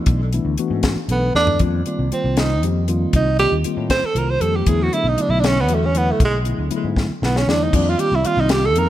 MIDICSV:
0, 0, Header, 1, 6, 480
1, 0, Start_track
1, 0, Tempo, 510638
1, 64, Time_signature, 6, 3, 24, 8
1, 8357, End_track
2, 0, Start_track
2, 0, Title_t, "Tenor saxophone"
2, 0, Program_c, 0, 66
2, 1046, Note_on_c, 0, 59, 70
2, 1259, Note_off_c, 0, 59, 0
2, 1277, Note_on_c, 0, 62, 96
2, 1495, Note_off_c, 0, 62, 0
2, 2006, Note_on_c, 0, 60, 68
2, 2236, Note_on_c, 0, 63, 81
2, 2250, Note_off_c, 0, 60, 0
2, 2471, Note_off_c, 0, 63, 0
2, 2969, Note_on_c, 0, 63, 79
2, 3181, Note_off_c, 0, 63, 0
2, 3188, Note_on_c, 0, 67, 90
2, 3331, Note_off_c, 0, 67, 0
2, 3669, Note_on_c, 0, 72, 96
2, 3809, Note_on_c, 0, 69, 86
2, 3823, Note_off_c, 0, 72, 0
2, 3929, Note_on_c, 0, 70, 77
2, 3944, Note_off_c, 0, 69, 0
2, 4043, Note_on_c, 0, 72, 97
2, 4057, Note_off_c, 0, 70, 0
2, 4145, Note_on_c, 0, 69, 87
2, 4159, Note_off_c, 0, 72, 0
2, 4286, Note_on_c, 0, 67, 73
2, 4301, Note_off_c, 0, 69, 0
2, 4399, Note_on_c, 0, 68, 92
2, 4413, Note_off_c, 0, 67, 0
2, 4536, Note_on_c, 0, 66, 79
2, 4550, Note_off_c, 0, 68, 0
2, 4644, Note_on_c, 0, 64, 82
2, 4658, Note_off_c, 0, 66, 0
2, 4779, Note_on_c, 0, 63, 75
2, 4793, Note_off_c, 0, 64, 0
2, 4903, Note_on_c, 0, 62, 72
2, 4917, Note_off_c, 0, 63, 0
2, 4981, Note_on_c, 0, 64, 80
2, 4995, Note_off_c, 0, 62, 0
2, 5074, Note_on_c, 0, 62, 73
2, 5088, Note_off_c, 0, 64, 0
2, 5135, Note_on_c, 0, 61, 92
2, 5149, Note_off_c, 0, 62, 0
2, 5267, Note_on_c, 0, 59, 76
2, 5281, Note_off_c, 0, 61, 0
2, 5399, Note_on_c, 0, 57, 68
2, 5413, Note_off_c, 0, 59, 0
2, 5504, Note_on_c, 0, 61, 77
2, 5518, Note_off_c, 0, 57, 0
2, 5616, Note_on_c, 0, 59, 82
2, 5630, Note_off_c, 0, 61, 0
2, 5747, Note_on_c, 0, 57, 63
2, 5761, Note_off_c, 0, 59, 0
2, 5847, Note_off_c, 0, 57, 0
2, 5874, Note_on_c, 0, 56, 85
2, 6003, Note_off_c, 0, 56, 0
2, 6813, Note_on_c, 0, 59, 72
2, 6930, Note_on_c, 0, 61, 80
2, 6944, Note_off_c, 0, 59, 0
2, 7040, Note_on_c, 0, 62, 85
2, 7054, Note_off_c, 0, 61, 0
2, 7175, Note_on_c, 0, 63, 77
2, 7190, Note_off_c, 0, 62, 0
2, 7292, Note_on_c, 0, 62, 76
2, 7306, Note_off_c, 0, 63, 0
2, 7423, Note_on_c, 0, 65, 71
2, 7437, Note_off_c, 0, 62, 0
2, 7513, Note_on_c, 0, 67, 100
2, 7527, Note_off_c, 0, 65, 0
2, 7664, Note_on_c, 0, 64, 81
2, 7678, Note_off_c, 0, 67, 0
2, 7769, Note_on_c, 0, 65, 88
2, 7783, Note_off_c, 0, 64, 0
2, 7902, Note_on_c, 0, 63, 78
2, 7916, Note_off_c, 0, 65, 0
2, 7999, Note_on_c, 0, 67, 102
2, 8013, Note_off_c, 0, 63, 0
2, 8138, Note_on_c, 0, 69, 83
2, 8152, Note_off_c, 0, 67, 0
2, 8255, Note_on_c, 0, 70, 97
2, 8269, Note_off_c, 0, 69, 0
2, 8357, Note_off_c, 0, 70, 0
2, 8357, End_track
3, 0, Start_track
3, 0, Title_t, "Tine electric piano"
3, 0, Program_c, 1, 4
3, 0, Note_on_c, 1, 52, 67
3, 0, Note_on_c, 1, 57, 60
3, 0, Note_on_c, 1, 59, 60
3, 0, Note_on_c, 1, 62, 58
3, 0, Note_on_c, 1, 64, 72
3, 187, Note_off_c, 1, 52, 0
3, 188, Note_off_c, 1, 57, 0
3, 188, Note_off_c, 1, 62, 0
3, 189, Note_off_c, 1, 59, 0
3, 191, Note_off_c, 1, 64, 0
3, 318, Note_on_c, 1, 52, 71
3, 319, Note_on_c, 1, 57, 65
3, 321, Note_on_c, 1, 62, 59
3, 322, Note_on_c, 1, 59, 63
3, 323, Note_on_c, 1, 64, 77
3, 493, Note_off_c, 1, 52, 0
3, 494, Note_off_c, 1, 57, 0
3, 495, Note_off_c, 1, 59, 0
3, 495, Note_off_c, 1, 62, 0
3, 496, Note_off_c, 1, 64, 0
3, 555, Note_on_c, 1, 57, 73
3, 557, Note_on_c, 1, 52, 78
3, 557, Note_on_c, 1, 59, 75
3, 559, Note_on_c, 1, 66, 94
3, 560, Note_on_c, 1, 62, 70
3, 914, Note_off_c, 1, 57, 0
3, 915, Note_off_c, 1, 52, 0
3, 915, Note_off_c, 1, 59, 0
3, 916, Note_off_c, 1, 66, 0
3, 917, Note_off_c, 1, 62, 0
3, 1035, Note_on_c, 1, 52, 61
3, 1038, Note_on_c, 1, 57, 54
3, 1039, Note_on_c, 1, 59, 52
3, 1039, Note_on_c, 1, 69, 68
3, 1041, Note_on_c, 1, 62, 52
3, 1212, Note_off_c, 1, 52, 0
3, 1214, Note_off_c, 1, 57, 0
3, 1214, Note_off_c, 1, 59, 0
3, 1214, Note_off_c, 1, 69, 0
3, 1215, Note_off_c, 1, 62, 0
3, 1268, Note_on_c, 1, 52, 63
3, 1272, Note_on_c, 1, 59, 59
3, 1273, Note_on_c, 1, 57, 57
3, 1273, Note_on_c, 1, 69, 74
3, 1278, Note_on_c, 1, 62, 58
3, 1507, Note_off_c, 1, 52, 0
3, 1509, Note_off_c, 1, 57, 0
3, 1509, Note_off_c, 1, 59, 0
3, 1509, Note_off_c, 1, 69, 0
3, 1511, Note_on_c, 1, 55, 72
3, 1512, Note_off_c, 1, 62, 0
3, 1514, Note_on_c, 1, 51, 72
3, 1514, Note_on_c, 1, 58, 70
3, 1517, Note_on_c, 1, 60, 67
3, 1520, Note_on_c, 1, 65, 84
3, 1700, Note_off_c, 1, 55, 0
3, 1702, Note_off_c, 1, 51, 0
3, 1702, Note_off_c, 1, 58, 0
3, 1703, Note_off_c, 1, 60, 0
3, 1705, Note_off_c, 1, 65, 0
3, 1752, Note_on_c, 1, 51, 64
3, 1757, Note_on_c, 1, 58, 66
3, 1757, Note_on_c, 1, 60, 68
3, 1758, Note_on_c, 1, 55, 68
3, 1759, Note_on_c, 1, 65, 71
3, 1931, Note_off_c, 1, 51, 0
3, 1933, Note_off_c, 1, 58, 0
3, 1933, Note_off_c, 1, 60, 0
3, 1934, Note_off_c, 1, 55, 0
3, 1934, Note_off_c, 1, 65, 0
3, 1990, Note_on_c, 1, 55, 63
3, 1993, Note_on_c, 1, 51, 62
3, 1994, Note_on_c, 1, 58, 62
3, 1995, Note_on_c, 1, 65, 71
3, 1999, Note_on_c, 1, 60, 63
3, 2352, Note_off_c, 1, 55, 0
3, 2353, Note_off_c, 1, 51, 0
3, 2354, Note_off_c, 1, 58, 0
3, 2354, Note_off_c, 1, 65, 0
3, 2356, Note_off_c, 1, 60, 0
3, 2474, Note_on_c, 1, 51, 62
3, 2475, Note_on_c, 1, 58, 56
3, 2478, Note_on_c, 1, 55, 56
3, 2482, Note_on_c, 1, 60, 54
3, 2484, Note_on_c, 1, 67, 69
3, 2652, Note_off_c, 1, 51, 0
3, 2652, Note_off_c, 1, 58, 0
3, 2654, Note_off_c, 1, 55, 0
3, 2656, Note_off_c, 1, 60, 0
3, 2657, Note_off_c, 1, 67, 0
3, 2708, Note_on_c, 1, 51, 83
3, 2711, Note_on_c, 1, 55, 70
3, 2711, Note_on_c, 1, 60, 70
3, 2712, Note_on_c, 1, 58, 71
3, 2719, Note_on_c, 1, 65, 89
3, 3071, Note_off_c, 1, 51, 0
3, 3073, Note_off_c, 1, 55, 0
3, 3073, Note_off_c, 1, 58, 0
3, 3073, Note_off_c, 1, 60, 0
3, 3076, Note_off_c, 1, 65, 0
3, 3192, Note_on_c, 1, 51, 56
3, 3193, Note_on_c, 1, 55, 53
3, 3196, Note_on_c, 1, 58, 57
3, 3199, Note_on_c, 1, 60, 58
3, 3201, Note_on_c, 1, 65, 66
3, 3371, Note_off_c, 1, 51, 0
3, 3371, Note_off_c, 1, 55, 0
3, 3373, Note_off_c, 1, 58, 0
3, 3375, Note_off_c, 1, 60, 0
3, 3375, Note_off_c, 1, 65, 0
3, 3428, Note_on_c, 1, 51, 75
3, 3431, Note_on_c, 1, 60, 63
3, 3432, Note_on_c, 1, 58, 63
3, 3433, Note_on_c, 1, 55, 62
3, 3438, Note_on_c, 1, 65, 78
3, 3791, Note_off_c, 1, 51, 0
3, 3793, Note_off_c, 1, 58, 0
3, 3793, Note_off_c, 1, 60, 0
3, 3794, Note_off_c, 1, 55, 0
3, 3796, Note_off_c, 1, 65, 0
3, 3903, Note_on_c, 1, 51, 66
3, 3904, Note_on_c, 1, 58, 58
3, 3905, Note_on_c, 1, 55, 60
3, 3907, Note_on_c, 1, 65, 77
3, 3909, Note_on_c, 1, 60, 58
3, 4087, Note_off_c, 1, 51, 0
3, 4087, Note_off_c, 1, 55, 0
3, 4087, Note_off_c, 1, 58, 0
3, 4088, Note_off_c, 1, 65, 0
3, 4090, Note_off_c, 1, 60, 0
3, 4144, Note_on_c, 1, 55, 67
3, 4144, Note_on_c, 1, 60, 66
3, 4146, Note_on_c, 1, 51, 67
3, 4148, Note_on_c, 1, 58, 64
3, 4149, Note_on_c, 1, 67, 79
3, 4385, Note_off_c, 1, 55, 0
3, 4385, Note_off_c, 1, 60, 0
3, 4386, Note_off_c, 1, 51, 0
3, 4387, Note_off_c, 1, 58, 0
3, 4387, Note_off_c, 1, 67, 0
3, 4393, Note_on_c, 1, 50, 85
3, 4395, Note_on_c, 1, 54, 74
3, 4396, Note_on_c, 1, 57, 70
3, 4398, Note_on_c, 1, 59, 74
3, 4405, Note_on_c, 1, 64, 85
3, 4582, Note_off_c, 1, 50, 0
3, 4583, Note_off_c, 1, 54, 0
3, 4583, Note_off_c, 1, 57, 0
3, 4584, Note_off_c, 1, 59, 0
3, 4587, Note_off_c, 1, 64, 0
3, 4623, Note_on_c, 1, 50, 60
3, 4626, Note_on_c, 1, 57, 59
3, 4626, Note_on_c, 1, 59, 61
3, 4627, Note_on_c, 1, 54, 62
3, 4630, Note_on_c, 1, 62, 69
3, 4807, Note_off_c, 1, 50, 0
3, 4808, Note_off_c, 1, 54, 0
3, 4808, Note_off_c, 1, 57, 0
3, 4808, Note_off_c, 1, 59, 0
3, 4810, Note_off_c, 1, 62, 0
3, 4864, Note_on_c, 1, 50, 76
3, 4864, Note_on_c, 1, 57, 70
3, 4865, Note_on_c, 1, 64, 75
3, 4867, Note_on_c, 1, 54, 61
3, 4871, Note_on_c, 1, 59, 68
3, 5229, Note_off_c, 1, 50, 0
3, 5229, Note_off_c, 1, 57, 0
3, 5230, Note_off_c, 1, 64, 0
3, 5231, Note_off_c, 1, 54, 0
3, 5233, Note_off_c, 1, 59, 0
3, 5351, Note_on_c, 1, 50, 67
3, 5353, Note_on_c, 1, 54, 58
3, 5357, Note_on_c, 1, 57, 59
3, 5359, Note_on_c, 1, 66, 71
3, 5361, Note_on_c, 1, 59, 60
3, 5531, Note_off_c, 1, 50, 0
3, 5531, Note_off_c, 1, 54, 0
3, 5533, Note_off_c, 1, 57, 0
3, 5534, Note_off_c, 1, 66, 0
3, 5536, Note_off_c, 1, 59, 0
3, 5593, Note_on_c, 1, 50, 66
3, 5593, Note_on_c, 1, 57, 65
3, 5596, Note_on_c, 1, 54, 57
3, 5599, Note_on_c, 1, 59, 58
3, 5604, Note_on_c, 1, 64, 78
3, 5954, Note_off_c, 1, 50, 0
3, 5954, Note_off_c, 1, 57, 0
3, 5955, Note_off_c, 1, 54, 0
3, 5957, Note_off_c, 1, 59, 0
3, 5959, Note_off_c, 1, 64, 0
3, 6068, Note_on_c, 1, 50, 59
3, 6070, Note_on_c, 1, 54, 59
3, 6073, Note_on_c, 1, 57, 55
3, 6073, Note_on_c, 1, 64, 74
3, 6077, Note_on_c, 1, 59, 60
3, 6249, Note_off_c, 1, 50, 0
3, 6250, Note_off_c, 1, 54, 0
3, 6252, Note_off_c, 1, 57, 0
3, 6252, Note_off_c, 1, 64, 0
3, 6254, Note_off_c, 1, 59, 0
3, 6304, Note_on_c, 1, 50, 81
3, 6306, Note_on_c, 1, 57, 73
3, 6310, Note_on_c, 1, 59, 70
3, 6311, Note_on_c, 1, 54, 68
3, 6312, Note_on_c, 1, 64, 97
3, 6669, Note_off_c, 1, 50, 0
3, 6670, Note_off_c, 1, 57, 0
3, 6672, Note_off_c, 1, 59, 0
3, 6673, Note_off_c, 1, 54, 0
3, 6673, Note_off_c, 1, 64, 0
3, 6791, Note_on_c, 1, 57, 54
3, 6793, Note_on_c, 1, 59, 57
3, 6796, Note_on_c, 1, 50, 60
3, 6797, Note_on_c, 1, 54, 55
3, 6798, Note_on_c, 1, 64, 70
3, 6971, Note_off_c, 1, 57, 0
3, 6972, Note_off_c, 1, 59, 0
3, 6973, Note_off_c, 1, 50, 0
3, 6974, Note_off_c, 1, 54, 0
3, 6974, Note_off_c, 1, 64, 0
3, 7031, Note_on_c, 1, 50, 66
3, 7033, Note_on_c, 1, 59, 60
3, 7034, Note_on_c, 1, 57, 60
3, 7036, Note_on_c, 1, 54, 58
3, 7036, Note_on_c, 1, 64, 67
3, 7269, Note_off_c, 1, 50, 0
3, 7270, Note_off_c, 1, 57, 0
3, 7270, Note_off_c, 1, 59, 0
3, 7271, Note_off_c, 1, 54, 0
3, 7271, Note_off_c, 1, 64, 0
3, 7272, Note_on_c, 1, 51, 78
3, 7274, Note_on_c, 1, 55, 69
3, 7274, Note_on_c, 1, 60, 70
3, 7276, Note_on_c, 1, 65, 79
3, 7277, Note_on_c, 1, 58, 68
3, 7461, Note_off_c, 1, 51, 0
3, 7462, Note_off_c, 1, 55, 0
3, 7462, Note_off_c, 1, 60, 0
3, 7463, Note_off_c, 1, 65, 0
3, 7464, Note_off_c, 1, 58, 0
3, 7501, Note_on_c, 1, 55, 57
3, 7504, Note_on_c, 1, 51, 65
3, 7504, Note_on_c, 1, 60, 55
3, 7505, Note_on_c, 1, 58, 56
3, 7505, Note_on_c, 1, 65, 63
3, 7686, Note_off_c, 1, 55, 0
3, 7687, Note_off_c, 1, 60, 0
3, 7688, Note_off_c, 1, 51, 0
3, 7688, Note_off_c, 1, 58, 0
3, 7688, Note_off_c, 1, 65, 0
3, 7752, Note_on_c, 1, 51, 72
3, 7756, Note_on_c, 1, 55, 67
3, 7758, Note_on_c, 1, 58, 59
3, 7758, Note_on_c, 1, 60, 61
3, 7761, Note_on_c, 1, 65, 76
3, 8113, Note_off_c, 1, 51, 0
3, 8116, Note_off_c, 1, 55, 0
3, 8117, Note_off_c, 1, 58, 0
3, 8117, Note_off_c, 1, 60, 0
3, 8118, Note_off_c, 1, 65, 0
3, 8235, Note_on_c, 1, 51, 64
3, 8237, Note_on_c, 1, 55, 57
3, 8241, Note_on_c, 1, 58, 58
3, 8241, Note_on_c, 1, 60, 63
3, 8242, Note_on_c, 1, 63, 69
3, 8357, Note_off_c, 1, 51, 0
3, 8357, Note_off_c, 1, 55, 0
3, 8357, Note_off_c, 1, 58, 0
3, 8357, Note_off_c, 1, 60, 0
3, 8357, Note_off_c, 1, 63, 0
3, 8357, End_track
4, 0, Start_track
4, 0, Title_t, "Fretless electric bass"
4, 0, Program_c, 2, 35
4, 64, Note_on_c, 2, 35, 86
4, 362, Note_off_c, 2, 35, 0
4, 422, Note_on_c, 2, 38, 72
4, 522, Note_off_c, 2, 38, 0
4, 662, Note_on_c, 2, 44, 75
4, 862, Note_off_c, 2, 44, 0
4, 1019, Note_on_c, 2, 35, 76
4, 1220, Note_off_c, 2, 35, 0
4, 1267, Note_on_c, 2, 40, 84
4, 1465, Note_off_c, 2, 40, 0
4, 1506, Note_on_c, 2, 41, 86
4, 1704, Note_off_c, 2, 41, 0
4, 1869, Note_on_c, 2, 36, 82
4, 1967, Note_off_c, 2, 36, 0
4, 2109, Note_on_c, 2, 36, 82
4, 2466, Note_off_c, 2, 36, 0
4, 2466, Note_on_c, 2, 41, 90
4, 2863, Note_off_c, 2, 41, 0
4, 2945, Note_on_c, 2, 36, 86
4, 3243, Note_off_c, 2, 36, 0
4, 3306, Note_on_c, 2, 39, 81
4, 3405, Note_off_c, 2, 39, 0
4, 3544, Note_on_c, 2, 45, 81
4, 3743, Note_off_c, 2, 45, 0
4, 3902, Note_on_c, 2, 36, 75
4, 4102, Note_off_c, 2, 36, 0
4, 4140, Note_on_c, 2, 41, 88
4, 4341, Note_off_c, 2, 41, 0
4, 4387, Note_on_c, 2, 40, 90
4, 4585, Note_off_c, 2, 40, 0
4, 4737, Note_on_c, 2, 35, 82
4, 4840, Note_off_c, 2, 35, 0
4, 4974, Note_on_c, 2, 35, 83
4, 5332, Note_off_c, 2, 35, 0
4, 5332, Note_on_c, 2, 40, 84
4, 5735, Note_off_c, 2, 40, 0
4, 5830, Note_on_c, 2, 35, 84
4, 6126, Note_off_c, 2, 35, 0
4, 6190, Note_on_c, 2, 38, 78
4, 6288, Note_off_c, 2, 38, 0
4, 6432, Note_on_c, 2, 44, 75
4, 6628, Note_off_c, 2, 44, 0
4, 6789, Note_on_c, 2, 35, 77
4, 6987, Note_off_c, 2, 35, 0
4, 7026, Note_on_c, 2, 40, 83
4, 7225, Note_off_c, 2, 40, 0
4, 7267, Note_on_c, 2, 41, 85
4, 7465, Note_off_c, 2, 41, 0
4, 7630, Note_on_c, 2, 36, 77
4, 7728, Note_off_c, 2, 36, 0
4, 7868, Note_on_c, 2, 36, 87
4, 8227, Note_off_c, 2, 36, 0
4, 8227, Note_on_c, 2, 41, 86
4, 8357, Note_off_c, 2, 41, 0
4, 8357, End_track
5, 0, Start_track
5, 0, Title_t, "Muted fretless electric bass strokes"
5, 542, Note_on_c, 9, 29, 36
5, 636, Note_off_c, 9, 29, 0
5, 900, Note_on_c, 9, 29, 30
5, 994, Note_off_c, 9, 29, 0
5, 3428, Note_on_c, 9, 29, 38
5, 3522, Note_off_c, 9, 29, 0
5, 3790, Note_on_c, 9, 29, 36
5, 3884, Note_off_c, 9, 29, 0
5, 4858, Note_on_c, 9, 29, 37
5, 4952, Note_off_c, 9, 29, 0
5, 6673, Note_on_c, 9, 29, 32
5, 6767, Note_off_c, 9, 29, 0
5, 7747, Note_on_c, 9, 29, 35
5, 7841, Note_off_c, 9, 29, 0
5, 8357, End_track
6, 0, Start_track
6, 0, Title_t, "Drums"
6, 58, Note_on_c, 9, 42, 80
6, 63, Note_on_c, 9, 36, 113
6, 152, Note_off_c, 9, 42, 0
6, 157, Note_off_c, 9, 36, 0
6, 306, Note_on_c, 9, 42, 51
6, 400, Note_off_c, 9, 42, 0
6, 541, Note_on_c, 9, 42, 57
6, 635, Note_off_c, 9, 42, 0
6, 779, Note_on_c, 9, 42, 77
6, 784, Note_on_c, 9, 36, 75
6, 787, Note_on_c, 9, 38, 103
6, 873, Note_off_c, 9, 42, 0
6, 878, Note_off_c, 9, 36, 0
6, 881, Note_off_c, 9, 38, 0
6, 1023, Note_on_c, 9, 42, 57
6, 1117, Note_off_c, 9, 42, 0
6, 1273, Note_on_c, 9, 38, 55
6, 1367, Note_off_c, 9, 38, 0
6, 1382, Note_on_c, 9, 43, 85
6, 1476, Note_off_c, 9, 43, 0
6, 1498, Note_on_c, 9, 42, 77
6, 1505, Note_on_c, 9, 36, 99
6, 1592, Note_off_c, 9, 42, 0
6, 1599, Note_off_c, 9, 36, 0
6, 1745, Note_on_c, 9, 42, 52
6, 1839, Note_off_c, 9, 42, 0
6, 1990, Note_on_c, 9, 42, 50
6, 2084, Note_off_c, 9, 42, 0
6, 2225, Note_on_c, 9, 42, 68
6, 2233, Note_on_c, 9, 38, 102
6, 2319, Note_off_c, 9, 42, 0
6, 2327, Note_off_c, 9, 38, 0
6, 2472, Note_on_c, 9, 42, 54
6, 2566, Note_off_c, 9, 42, 0
6, 2707, Note_on_c, 9, 42, 52
6, 2801, Note_off_c, 9, 42, 0
6, 2944, Note_on_c, 9, 42, 84
6, 2946, Note_on_c, 9, 36, 104
6, 3038, Note_off_c, 9, 42, 0
6, 3040, Note_off_c, 9, 36, 0
6, 3186, Note_on_c, 9, 42, 47
6, 3280, Note_off_c, 9, 42, 0
6, 3424, Note_on_c, 9, 42, 61
6, 3518, Note_off_c, 9, 42, 0
6, 3666, Note_on_c, 9, 36, 78
6, 3666, Note_on_c, 9, 42, 83
6, 3673, Note_on_c, 9, 38, 109
6, 3760, Note_off_c, 9, 36, 0
6, 3760, Note_off_c, 9, 42, 0
6, 3767, Note_off_c, 9, 38, 0
6, 3907, Note_on_c, 9, 42, 63
6, 4001, Note_off_c, 9, 42, 0
6, 4146, Note_on_c, 9, 42, 64
6, 4240, Note_off_c, 9, 42, 0
6, 4385, Note_on_c, 9, 42, 95
6, 4387, Note_on_c, 9, 36, 110
6, 4479, Note_off_c, 9, 42, 0
6, 4481, Note_off_c, 9, 36, 0
6, 4633, Note_on_c, 9, 42, 55
6, 4727, Note_off_c, 9, 42, 0
6, 4868, Note_on_c, 9, 42, 63
6, 4962, Note_off_c, 9, 42, 0
6, 5111, Note_on_c, 9, 42, 76
6, 5118, Note_on_c, 9, 38, 106
6, 5205, Note_off_c, 9, 42, 0
6, 5212, Note_off_c, 9, 38, 0
6, 5344, Note_on_c, 9, 42, 59
6, 5438, Note_off_c, 9, 42, 0
6, 5591, Note_on_c, 9, 42, 60
6, 5685, Note_off_c, 9, 42, 0
6, 5829, Note_on_c, 9, 36, 113
6, 5831, Note_on_c, 9, 42, 78
6, 5923, Note_off_c, 9, 36, 0
6, 5925, Note_off_c, 9, 42, 0
6, 6065, Note_on_c, 9, 42, 52
6, 6159, Note_off_c, 9, 42, 0
6, 6304, Note_on_c, 9, 42, 53
6, 6398, Note_off_c, 9, 42, 0
6, 6547, Note_on_c, 9, 36, 71
6, 6555, Note_on_c, 9, 38, 58
6, 6641, Note_off_c, 9, 36, 0
6, 6649, Note_off_c, 9, 38, 0
6, 6797, Note_on_c, 9, 38, 67
6, 6891, Note_off_c, 9, 38, 0
6, 6920, Note_on_c, 9, 38, 67
6, 7014, Note_off_c, 9, 38, 0
6, 7039, Note_on_c, 9, 38, 83
6, 7133, Note_off_c, 9, 38, 0
6, 7268, Note_on_c, 9, 36, 109
6, 7271, Note_on_c, 9, 42, 82
6, 7271, Note_on_c, 9, 55, 79
6, 7362, Note_off_c, 9, 36, 0
6, 7365, Note_off_c, 9, 42, 0
6, 7365, Note_off_c, 9, 55, 0
6, 7511, Note_on_c, 9, 42, 56
6, 7605, Note_off_c, 9, 42, 0
6, 7751, Note_on_c, 9, 42, 59
6, 7845, Note_off_c, 9, 42, 0
6, 7983, Note_on_c, 9, 42, 75
6, 7990, Note_on_c, 9, 38, 105
6, 8077, Note_off_c, 9, 42, 0
6, 8084, Note_off_c, 9, 38, 0
6, 8231, Note_on_c, 9, 42, 64
6, 8325, Note_off_c, 9, 42, 0
6, 8357, End_track
0, 0, End_of_file